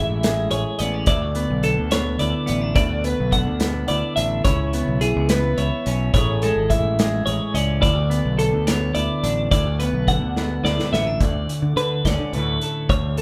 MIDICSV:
0, 0, Header, 1, 5, 480
1, 0, Start_track
1, 0, Tempo, 562324
1, 921, Time_signature, 6, 3, 24, 8
1, 11282, End_track
2, 0, Start_track
2, 0, Title_t, "Clean electric guitar"
2, 0, Program_c, 0, 27
2, 0, Note_on_c, 0, 76, 75
2, 433, Note_off_c, 0, 76, 0
2, 437, Note_on_c, 0, 73, 68
2, 673, Note_off_c, 0, 73, 0
2, 673, Note_on_c, 0, 74, 76
2, 906, Note_off_c, 0, 74, 0
2, 917, Note_on_c, 0, 74, 94
2, 1397, Note_on_c, 0, 69, 78
2, 1398, Note_off_c, 0, 74, 0
2, 1638, Note_off_c, 0, 69, 0
2, 1638, Note_on_c, 0, 73, 83
2, 1869, Note_off_c, 0, 73, 0
2, 1872, Note_on_c, 0, 74, 70
2, 2345, Note_off_c, 0, 74, 0
2, 2355, Note_on_c, 0, 74, 87
2, 2600, Note_off_c, 0, 74, 0
2, 2600, Note_on_c, 0, 71, 80
2, 2839, Note_off_c, 0, 71, 0
2, 2839, Note_on_c, 0, 78, 77
2, 3312, Note_off_c, 0, 78, 0
2, 3315, Note_on_c, 0, 74, 71
2, 3546, Note_off_c, 0, 74, 0
2, 3550, Note_on_c, 0, 76, 68
2, 3791, Note_off_c, 0, 76, 0
2, 3795, Note_on_c, 0, 73, 88
2, 4276, Note_off_c, 0, 73, 0
2, 4277, Note_on_c, 0, 68, 76
2, 4517, Note_off_c, 0, 68, 0
2, 4520, Note_on_c, 0, 71, 81
2, 4759, Note_off_c, 0, 71, 0
2, 4762, Note_on_c, 0, 73, 68
2, 5231, Note_off_c, 0, 73, 0
2, 5241, Note_on_c, 0, 73, 87
2, 5479, Note_off_c, 0, 73, 0
2, 5488, Note_on_c, 0, 69, 81
2, 5718, Note_on_c, 0, 76, 80
2, 5723, Note_off_c, 0, 69, 0
2, 6191, Note_off_c, 0, 76, 0
2, 6194, Note_on_c, 0, 73, 73
2, 6443, Note_off_c, 0, 73, 0
2, 6443, Note_on_c, 0, 74, 73
2, 6664, Note_off_c, 0, 74, 0
2, 6674, Note_on_c, 0, 74, 95
2, 7156, Note_off_c, 0, 74, 0
2, 7159, Note_on_c, 0, 69, 79
2, 7402, Note_off_c, 0, 69, 0
2, 7402, Note_on_c, 0, 73, 87
2, 7637, Note_on_c, 0, 74, 75
2, 7640, Note_off_c, 0, 73, 0
2, 8111, Note_off_c, 0, 74, 0
2, 8122, Note_on_c, 0, 74, 92
2, 8360, Note_off_c, 0, 74, 0
2, 8361, Note_on_c, 0, 71, 79
2, 8600, Note_off_c, 0, 71, 0
2, 8607, Note_on_c, 0, 78, 75
2, 9083, Note_off_c, 0, 78, 0
2, 9089, Note_on_c, 0, 74, 74
2, 9323, Note_off_c, 0, 74, 0
2, 9327, Note_on_c, 0, 76, 69
2, 9569, Note_off_c, 0, 76, 0
2, 9569, Note_on_c, 0, 74, 90
2, 10043, Note_off_c, 0, 74, 0
2, 10047, Note_on_c, 0, 71, 78
2, 10289, Note_off_c, 0, 71, 0
2, 10289, Note_on_c, 0, 74, 85
2, 10525, Note_off_c, 0, 74, 0
2, 10525, Note_on_c, 0, 71, 71
2, 11002, Note_off_c, 0, 71, 0
2, 11010, Note_on_c, 0, 73, 87
2, 11245, Note_off_c, 0, 73, 0
2, 11253, Note_on_c, 0, 69, 79
2, 11282, Note_off_c, 0, 69, 0
2, 11282, End_track
3, 0, Start_track
3, 0, Title_t, "Clean electric guitar"
3, 0, Program_c, 1, 27
3, 0, Note_on_c, 1, 45, 77
3, 0, Note_on_c, 1, 52, 57
3, 0, Note_on_c, 1, 56, 65
3, 0, Note_on_c, 1, 61, 54
3, 0, Note_on_c, 1, 68, 74
3, 206, Note_off_c, 1, 56, 0
3, 216, Note_on_c, 1, 56, 57
3, 440, Note_off_c, 1, 68, 0
3, 450, Note_on_c, 1, 68, 61
3, 680, Note_off_c, 1, 61, 0
3, 683, Note_on_c, 1, 59, 62
3, 800, Note_off_c, 1, 59, 0
3, 800, Note_on_c, 1, 61, 51
3, 893, Note_off_c, 1, 52, 0
3, 897, Note_off_c, 1, 68, 0
3, 900, Note_off_c, 1, 56, 0
3, 921, Note_off_c, 1, 61, 0
3, 925, Note_on_c, 1, 38, 78
3, 926, Note_off_c, 1, 45, 0
3, 929, Note_on_c, 1, 64, 75
3, 1040, Note_off_c, 1, 64, 0
3, 1040, Note_on_c, 1, 66, 63
3, 1158, Note_on_c, 1, 59, 65
3, 1395, Note_on_c, 1, 50, 60
3, 1638, Note_off_c, 1, 59, 0
3, 1641, Note_on_c, 1, 59, 61
3, 1876, Note_off_c, 1, 66, 0
3, 1879, Note_on_c, 1, 64, 56
3, 2102, Note_off_c, 1, 59, 0
3, 2102, Note_on_c, 1, 59, 65
3, 2232, Note_off_c, 1, 59, 0
3, 2232, Note_on_c, 1, 62, 51
3, 2339, Note_off_c, 1, 64, 0
3, 2341, Note_off_c, 1, 38, 0
3, 2350, Note_on_c, 1, 38, 78
3, 2352, Note_on_c, 1, 64, 64
3, 2356, Note_off_c, 1, 62, 0
3, 2469, Note_off_c, 1, 64, 0
3, 2469, Note_on_c, 1, 66, 65
3, 2603, Note_on_c, 1, 59, 67
3, 2817, Note_off_c, 1, 50, 0
3, 2828, Note_on_c, 1, 50, 62
3, 3070, Note_off_c, 1, 59, 0
3, 3073, Note_on_c, 1, 59, 59
3, 3309, Note_off_c, 1, 66, 0
3, 3312, Note_on_c, 1, 64, 57
3, 3565, Note_on_c, 1, 62, 60
3, 3767, Note_off_c, 1, 59, 0
3, 3772, Note_off_c, 1, 62, 0
3, 3792, Note_off_c, 1, 50, 0
3, 3793, Note_off_c, 1, 64, 0
3, 3794, Note_off_c, 1, 38, 0
3, 3795, Note_on_c, 1, 49, 79
3, 3803, Note_on_c, 1, 64, 69
3, 4046, Note_on_c, 1, 59, 64
3, 4276, Note_off_c, 1, 49, 0
3, 4284, Note_on_c, 1, 52, 55
3, 4518, Note_off_c, 1, 59, 0
3, 4528, Note_on_c, 1, 59, 65
3, 4755, Note_off_c, 1, 64, 0
3, 4765, Note_on_c, 1, 64, 54
3, 5012, Note_on_c, 1, 61, 60
3, 5211, Note_off_c, 1, 52, 0
3, 5214, Note_off_c, 1, 59, 0
3, 5216, Note_off_c, 1, 61, 0
3, 5241, Note_off_c, 1, 64, 0
3, 5247, Note_on_c, 1, 45, 74
3, 5255, Note_on_c, 1, 68, 66
3, 5497, Note_on_c, 1, 56, 65
3, 5728, Note_on_c, 1, 52, 55
3, 5959, Note_off_c, 1, 56, 0
3, 5969, Note_on_c, 1, 56, 63
3, 6196, Note_off_c, 1, 68, 0
3, 6206, Note_on_c, 1, 68, 61
3, 6439, Note_on_c, 1, 61, 66
3, 6649, Note_off_c, 1, 61, 0
3, 6653, Note_off_c, 1, 68, 0
3, 6654, Note_off_c, 1, 52, 0
3, 6654, Note_off_c, 1, 56, 0
3, 6663, Note_on_c, 1, 38, 73
3, 6668, Note_on_c, 1, 64, 68
3, 6683, Note_off_c, 1, 45, 0
3, 6787, Note_off_c, 1, 64, 0
3, 6787, Note_on_c, 1, 66, 63
3, 6914, Note_on_c, 1, 59, 64
3, 7145, Note_on_c, 1, 50, 59
3, 7396, Note_off_c, 1, 59, 0
3, 7399, Note_on_c, 1, 59, 61
3, 7632, Note_off_c, 1, 66, 0
3, 7637, Note_on_c, 1, 64, 60
3, 7883, Note_on_c, 1, 62, 63
3, 8090, Note_off_c, 1, 59, 0
3, 8111, Note_off_c, 1, 64, 0
3, 8119, Note_off_c, 1, 38, 0
3, 8123, Note_on_c, 1, 38, 81
3, 8124, Note_on_c, 1, 64, 63
3, 8147, Note_off_c, 1, 62, 0
3, 8250, Note_off_c, 1, 64, 0
3, 8250, Note_on_c, 1, 66, 65
3, 8381, Note_on_c, 1, 59, 65
3, 8592, Note_off_c, 1, 50, 0
3, 8610, Note_on_c, 1, 50, 57
3, 8847, Note_off_c, 1, 59, 0
3, 8857, Note_on_c, 1, 59, 58
3, 9085, Note_off_c, 1, 66, 0
3, 9103, Note_on_c, 1, 64, 56
3, 9323, Note_off_c, 1, 59, 0
3, 9334, Note_on_c, 1, 59, 63
3, 9450, Note_off_c, 1, 59, 0
3, 9450, Note_on_c, 1, 62, 50
3, 9565, Note_off_c, 1, 62, 0
3, 9571, Note_off_c, 1, 64, 0
3, 9573, Note_off_c, 1, 38, 0
3, 9583, Note_on_c, 1, 38, 72
3, 10052, Note_off_c, 1, 50, 0
3, 10062, Note_on_c, 1, 50, 55
3, 10307, Note_on_c, 1, 61, 58
3, 10539, Note_on_c, 1, 45, 60
3, 10781, Note_on_c, 1, 69, 58
3, 10982, Note_off_c, 1, 69, 0
3, 10999, Note_off_c, 1, 38, 0
3, 11009, Note_on_c, 1, 38, 74
3, 11010, Note_off_c, 1, 45, 0
3, 11035, Note_off_c, 1, 61, 0
3, 11282, Note_off_c, 1, 38, 0
3, 11282, Note_off_c, 1, 50, 0
3, 11282, End_track
4, 0, Start_track
4, 0, Title_t, "Fingered electric bass"
4, 0, Program_c, 2, 33
4, 89, Note_on_c, 2, 33, 83
4, 403, Note_off_c, 2, 33, 0
4, 440, Note_on_c, 2, 33, 91
4, 547, Note_off_c, 2, 33, 0
4, 682, Note_on_c, 2, 33, 96
4, 893, Note_off_c, 2, 33, 0
4, 913, Note_on_c, 2, 38, 100
4, 1234, Note_off_c, 2, 38, 0
4, 1282, Note_on_c, 2, 35, 90
4, 1493, Note_off_c, 2, 35, 0
4, 1526, Note_on_c, 2, 38, 84
4, 1841, Note_off_c, 2, 38, 0
4, 1884, Note_on_c, 2, 38, 103
4, 1988, Note_off_c, 2, 38, 0
4, 2129, Note_on_c, 2, 33, 91
4, 2336, Note_off_c, 2, 33, 0
4, 2355, Note_on_c, 2, 38, 100
4, 2674, Note_off_c, 2, 38, 0
4, 2733, Note_on_c, 2, 35, 88
4, 2938, Note_off_c, 2, 35, 0
4, 2962, Note_on_c, 2, 38, 88
4, 3278, Note_off_c, 2, 38, 0
4, 3328, Note_on_c, 2, 38, 96
4, 3429, Note_off_c, 2, 38, 0
4, 3562, Note_on_c, 2, 33, 92
4, 3772, Note_off_c, 2, 33, 0
4, 3799, Note_on_c, 2, 37, 94
4, 4116, Note_off_c, 2, 37, 0
4, 4163, Note_on_c, 2, 35, 86
4, 4372, Note_off_c, 2, 35, 0
4, 4408, Note_on_c, 2, 37, 89
4, 4721, Note_off_c, 2, 37, 0
4, 4759, Note_on_c, 2, 37, 90
4, 4864, Note_off_c, 2, 37, 0
4, 5008, Note_on_c, 2, 35, 94
4, 5215, Note_off_c, 2, 35, 0
4, 5240, Note_on_c, 2, 33, 97
4, 5556, Note_off_c, 2, 33, 0
4, 5599, Note_on_c, 2, 32, 89
4, 5810, Note_off_c, 2, 32, 0
4, 5835, Note_on_c, 2, 33, 86
4, 6154, Note_off_c, 2, 33, 0
4, 6205, Note_on_c, 2, 33, 92
4, 6307, Note_off_c, 2, 33, 0
4, 6438, Note_on_c, 2, 37, 91
4, 6649, Note_off_c, 2, 37, 0
4, 6683, Note_on_c, 2, 38, 90
4, 6998, Note_off_c, 2, 38, 0
4, 7045, Note_on_c, 2, 35, 89
4, 7253, Note_off_c, 2, 35, 0
4, 7287, Note_on_c, 2, 38, 84
4, 7601, Note_off_c, 2, 38, 0
4, 7648, Note_on_c, 2, 38, 91
4, 7749, Note_off_c, 2, 38, 0
4, 7882, Note_on_c, 2, 33, 85
4, 8092, Note_off_c, 2, 33, 0
4, 8127, Note_on_c, 2, 38, 93
4, 8441, Note_off_c, 2, 38, 0
4, 8477, Note_on_c, 2, 35, 87
4, 8689, Note_off_c, 2, 35, 0
4, 8719, Note_on_c, 2, 38, 80
4, 9036, Note_off_c, 2, 38, 0
4, 9084, Note_on_c, 2, 38, 92
4, 9188, Note_off_c, 2, 38, 0
4, 9326, Note_on_c, 2, 33, 91
4, 9535, Note_off_c, 2, 33, 0
4, 9564, Note_on_c, 2, 38, 88
4, 9774, Note_off_c, 2, 38, 0
4, 9922, Note_on_c, 2, 50, 94
4, 10026, Note_off_c, 2, 50, 0
4, 10040, Note_on_c, 2, 50, 84
4, 10252, Note_off_c, 2, 50, 0
4, 10286, Note_on_c, 2, 38, 87
4, 10389, Note_off_c, 2, 38, 0
4, 10404, Note_on_c, 2, 50, 81
4, 10525, Note_on_c, 2, 38, 81
4, 10538, Note_off_c, 2, 50, 0
4, 10734, Note_off_c, 2, 38, 0
4, 11007, Note_on_c, 2, 38, 100
4, 11282, Note_off_c, 2, 38, 0
4, 11282, End_track
5, 0, Start_track
5, 0, Title_t, "Drums"
5, 199, Note_on_c, 9, 42, 97
5, 207, Note_on_c, 9, 38, 116
5, 285, Note_off_c, 9, 42, 0
5, 292, Note_off_c, 9, 38, 0
5, 434, Note_on_c, 9, 42, 75
5, 519, Note_off_c, 9, 42, 0
5, 672, Note_on_c, 9, 42, 77
5, 757, Note_off_c, 9, 42, 0
5, 907, Note_on_c, 9, 42, 93
5, 913, Note_on_c, 9, 36, 105
5, 992, Note_off_c, 9, 42, 0
5, 998, Note_off_c, 9, 36, 0
5, 1152, Note_on_c, 9, 42, 65
5, 1237, Note_off_c, 9, 42, 0
5, 1392, Note_on_c, 9, 42, 61
5, 1477, Note_off_c, 9, 42, 0
5, 1631, Note_on_c, 9, 42, 93
5, 1639, Note_on_c, 9, 38, 108
5, 1716, Note_off_c, 9, 42, 0
5, 1724, Note_off_c, 9, 38, 0
5, 1872, Note_on_c, 9, 42, 71
5, 1957, Note_off_c, 9, 42, 0
5, 2111, Note_on_c, 9, 42, 70
5, 2196, Note_off_c, 9, 42, 0
5, 2352, Note_on_c, 9, 42, 86
5, 2353, Note_on_c, 9, 36, 107
5, 2437, Note_off_c, 9, 42, 0
5, 2439, Note_off_c, 9, 36, 0
5, 2595, Note_on_c, 9, 42, 66
5, 2681, Note_off_c, 9, 42, 0
5, 2835, Note_on_c, 9, 36, 77
5, 2837, Note_on_c, 9, 42, 68
5, 2921, Note_off_c, 9, 36, 0
5, 2923, Note_off_c, 9, 42, 0
5, 3072, Note_on_c, 9, 42, 88
5, 3079, Note_on_c, 9, 38, 107
5, 3157, Note_off_c, 9, 42, 0
5, 3165, Note_off_c, 9, 38, 0
5, 3311, Note_on_c, 9, 42, 70
5, 3396, Note_off_c, 9, 42, 0
5, 3557, Note_on_c, 9, 42, 82
5, 3642, Note_off_c, 9, 42, 0
5, 3795, Note_on_c, 9, 42, 94
5, 3797, Note_on_c, 9, 36, 114
5, 3880, Note_off_c, 9, 42, 0
5, 3882, Note_off_c, 9, 36, 0
5, 4039, Note_on_c, 9, 42, 73
5, 4125, Note_off_c, 9, 42, 0
5, 4277, Note_on_c, 9, 42, 72
5, 4362, Note_off_c, 9, 42, 0
5, 4515, Note_on_c, 9, 42, 101
5, 4522, Note_on_c, 9, 38, 116
5, 4600, Note_off_c, 9, 42, 0
5, 4608, Note_off_c, 9, 38, 0
5, 4760, Note_on_c, 9, 42, 74
5, 4845, Note_off_c, 9, 42, 0
5, 5002, Note_on_c, 9, 42, 71
5, 5087, Note_off_c, 9, 42, 0
5, 5239, Note_on_c, 9, 36, 108
5, 5241, Note_on_c, 9, 42, 84
5, 5325, Note_off_c, 9, 36, 0
5, 5327, Note_off_c, 9, 42, 0
5, 5480, Note_on_c, 9, 42, 71
5, 5565, Note_off_c, 9, 42, 0
5, 5720, Note_on_c, 9, 36, 77
5, 5723, Note_on_c, 9, 42, 65
5, 5806, Note_off_c, 9, 36, 0
5, 5809, Note_off_c, 9, 42, 0
5, 5965, Note_on_c, 9, 42, 90
5, 5973, Note_on_c, 9, 38, 108
5, 6051, Note_off_c, 9, 42, 0
5, 6058, Note_off_c, 9, 38, 0
5, 6203, Note_on_c, 9, 42, 65
5, 6288, Note_off_c, 9, 42, 0
5, 6443, Note_on_c, 9, 42, 73
5, 6529, Note_off_c, 9, 42, 0
5, 6681, Note_on_c, 9, 36, 103
5, 6682, Note_on_c, 9, 42, 88
5, 6766, Note_off_c, 9, 36, 0
5, 6767, Note_off_c, 9, 42, 0
5, 6924, Note_on_c, 9, 42, 65
5, 7009, Note_off_c, 9, 42, 0
5, 7161, Note_on_c, 9, 42, 66
5, 7246, Note_off_c, 9, 42, 0
5, 7402, Note_on_c, 9, 42, 97
5, 7410, Note_on_c, 9, 38, 113
5, 7488, Note_off_c, 9, 42, 0
5, 7495, Note_off_c, 9, 38, 0
5, 7638, Note_on_c, 9, 42, 72
5, 7723, Note_off_c, 9, 42, 0
5, 7884, Note_on_c, 9, 42, 76
5, 7970, Note_off_c, 9, 42, 0
5, 8122, Note_on_c, 9, 36, 113
5, 8124, Note_on_c, 9, 42, 93
5, 8207, Note_off_c, 9, 36, 0
5, 8209, Note_off_c, 9, 42, 0
5, 8364, Note_on_c, 9, 42, 75
5, 8449, Note_off_c, 9, 42, 0
5, 8602, Note_on_c, 9, 36, 75
5, 8604, Note_on_c, 9, 42, 73
5, 8687, Note_off_c, 9, 36, 0
5, 8689, Note_off_c, 9, 42, 0
5, 8848, Note_on_c, 9, 38, 62
5, 8933, Note_off_c, 9, 38, 0
5, 9092, Note_on_c, 9, 38, 78
5, 9177, Note_off_c, 9, 38, 0
5, 9213, Note_on_c, 9, 38, 67
5, 9298, Note_off_c, 9, 38, 0
5, 9335, Note_on_c, 9, 38, 105
5, 9420, Note_off_c, 9, 38, 0
5, 9565, Note_on_c, 9, 36, 103
5, 9565, Note_on_c, 9, 42, 80
5, 9650, Note_off_c, 9, 36, 0
5, 9650, Note_off_c, 9, 42, 0
5, 9811, Note_on_c, 9, 42, 59
5, 9896, Note_off_c, 9, 42, 0
5, 10046, Note_on_c, 9, 42, 56
5, 10132, Note_off_c, 9, 42, 0
5, 10285, Note_on_c, 9, 36, 70
5, 10287, Note_on_c, 9, 42, 80
5, 10295, Note_on_c, 9, 38, 99
5, 10371, Note_off_c, 9, 36, 0
5, 10373, Note_off_c, 9, 42, 0
5, 10380, Note_off_c, 9, 38, 0
5, 10528, Note_on_c, 9, 42, 58
5, 10614, Note_off_c, 9, 42, 0
5, 10767, Note_on_c, 9, 42, 59
5, 10853, Note_off_c, 9, 42, 0
5, 11006, Note_on_c, 9, 36, 106
5, 11011, Note_on_c, 9, 42, 76
5, 11092, Note_off_c, 9, 36, 0
5, 11096, Note_off_c, 9, 42, 0
5, 11246, Note_on_c, 9, 42, 59
5, 11282, Note_off_c, 9, 42, 0
5, 11282, End_track
0, 0, End_of_file